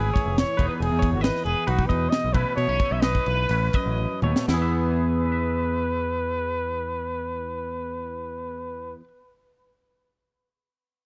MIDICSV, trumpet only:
0, 0, Header, 1, 2, 480
1, 0, Start_track
1, 0, Key_signature, 4, "major"
1, 0, Tempo, 436047
1, 882, Time_signature, 4, 2, 24, 8
1, 2329, Tempo, 461184
1, 3769, Tempo, 493421
1, 4729, Tempo, 509338
1, 10922, End_track
2, 0, Start_track
2, 0, Title_t, "Trumpet"
2, 0, Program_c, 0, 56
2, 0, Note_on_c, 0, 68, 80
2, 403, Note_off_c, 0, 68, 0
2, 421, Note_on_c, 0, 73, 83
2, 745, Note_off_c, 0, 73, 0
2, 755, Note_on_c, 0, 71, 69
2, 811, Note_off_c, 0, 71, 0
2, 890, Note_on_c, 0, 68, 84
2, 1219, Note_off_c, 0, 68, 0
2, 1248, Note_on_c, 0, 66, 66
2, 1344, Note_off_c, 0, 66, 0
2, 1350, Note_on_c, 0, 71, 83
2, 1578, Note_off_c, 0, 71, 0
2, 1590, Note_on_c, 0, 68, 78
2, 1850, Note_on_c, 0, 66, 79
2, 1867, Note_off_c, 0, 68, 0
2, 2052, Note_on_c, 0, 71, 78
2, 2068, Note_off_c, 0, 66, 0
2, 2308, Note_on_c, 0, 75, 80
2, 2325, Note_off_c, 0, 71, 0
2, 2556, Note_on_c, 0, 71, 84
2, 2571, Note_off_c, 0, 75, 0
2, 2784, Note_off_c, 0, 71, 0
2, 2790, Note_on_c, 0, 73, 93
2, 3167, Note_on_c, 0, 76, 74
2, 3183, Note_off_c, 0, 73, 0
2, 3263, Note_on_c, 0, 71, 87
2, 3279, Note_off_c, 0, 76, 0
2, 4476, Note_off_c, 0, 71, 0
2, 4725, Note_on_c, 0, 71, 68
2, 8927, Note_off_c, 0, 71, 0
2, 10922, End_track
0, 0, End_of_file